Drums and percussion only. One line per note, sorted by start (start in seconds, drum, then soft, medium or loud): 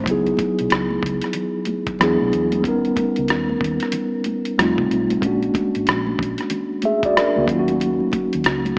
0.06 kick medium
0.06 closed hi-hat medium
0.06 muted conga soft
0.27 closed hi-hat soft
0.37 kick medium
0.37 closed hi-hat medium
0.37 muted conga soft
0.37 high conga medium
0.59 closed hi-hat soft
0.70 cross-stick medium
0.70 closed hi-hat medium
0.70 muted conga soft
0.91 high conga soft
1.02 kick medium
1.02 closed hi-hat soft
1.02 muted conga soft
1.02 low conga soft
1.21 cross-stick soft
1.21 closed hi-hat soft
1.33 closed hi-hat medium
1.33 low conga medium
1.65 closed hi-hat medium
1.65 high conga soft
1.87 kick medium
1.87 closed hi-hat soft
1.99 cross-stick medium
1.99 closed hi-hat medium
1.99 muted conga soft
2.20 high conga soft
2.32 closed hi-hat soft
2.32 muted conga soft
2.52 closed hi-hat soft
2.52 high conga soft
2.64 kick medium
2.64 closed hi-hat medium
2.64 muted conga soft
2.85 closed hi-hat soft
2.96 kick medium
2.96 closed hi-hat medium
2.96 muted conga soft
2.96 high conga medium
3.16 closed hi-hat soft
3.28 cross-stick medium
3.28 closed hi-hat medium
3.28 muted conga soft
3.49 high conga soft
3.61 kick medium
3.61 closed hi-hat soft
3.61 muted conga soft
3.61 low conga medium
3.80 cross-stick soft
3.80 closed hi-hat soft
3.92 closed hi-hat medium
3.92 muted conga soft
3.92 low conga medium
4.24 closed hi-hat medium
4.24 high conga medium
4.45 closed hi-hat soft
4.59 cross-stick medium
4.59 closed hi-hat medium
4.78 kick medium
4.78 high conga soft
4.91 closed hi-hat medium
5.10 closed hi-hat soft
5.10 high conga soft
5.22 kick medium
5.22 closed hi-hat medium
5.43 closed hi-hat soft
5.54 kick medium
5.54 closed hi-hat medium
5.54 muted conga soft
5.54 high conga medium
5.75 closed hi-hat soft
5.87 cross-stick medium
5.87 closed hi-hat medium
5.87 muted conga soft
6.07 high conga soft
6.19 kick medium
6.19 closed hi-hat soft
6.19 muted conga soft
6.19 low conga medium
6.38 cross-stick soft
6.38 closed hi-hat soft
6.50 closed hi-hat medium
6.50 muted conga soft
6.50 low conga medium
6.82 closed hi-hat medium
6.82 muted conga soft
6.82 high conga medium
7.03 kick medium
7.03 closed hi-hat soft
7.17 cross-stick medium
7.17 closed hi-hat medium
7.36 high conga soft
7.48 kick medium
7.48 closed hi-hat medium
7.48 muted conga soft
7.68 closed hi-hat soft
7.68 high conga soft
7.80 closed hi-hat medium
7.80 muted conga soft
8.00 high conga soft
8.12 kick medium
8.12 closed hi-hat medium
8.12 muted conga soft
8.12 high conga medium
8.33 closed hi-hat soft
8.44 cross-stick medium
8.44 closed hi-hat medium
8.65 closed hi-hat soft
8.65 high conga medium